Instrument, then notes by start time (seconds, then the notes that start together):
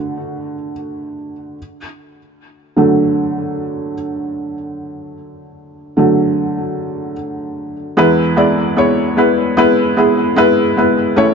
felt piano
Already playing: D3 A3 F#4 F#5
2.76 D3 F#3 A3
5.97 D3 F#3 A3
7.97 E2 E3 G#3 B3 E4 B4
8.36 G#3 B3 E4 D5
8.77 G#3 B3 E4 C#5
9.17 G#3 B3 E4 B4
9.57 G#3 B3 E4 B4
9.97 G#3 B3 E4 G#4
10.36 G#3 B3 E4 B4
10.77 G#3 B3 E4 B4
11.16 A1 A2 A3 C#4 E4 C#5